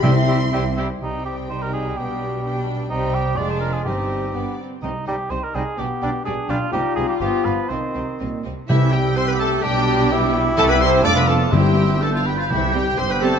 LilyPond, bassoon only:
\new Staff \with { instrumentName = "Bassoon" } { \clef bass \time 2/4 \key c \major \tempo 4 = 126 g8 g8 g8 g8 | \key c \minor g2~ | g2 | g4 aes4 |
c'4 b8 r8 | r8 g16 r8. g16 r16 | r8 g16 r8. g16 r16 | g4 f4 |
ees4. r8 | \key c \major g'2 | d'4 e'4~ | e'4 f'4 |
e'4. r8 | r4 c'4 | }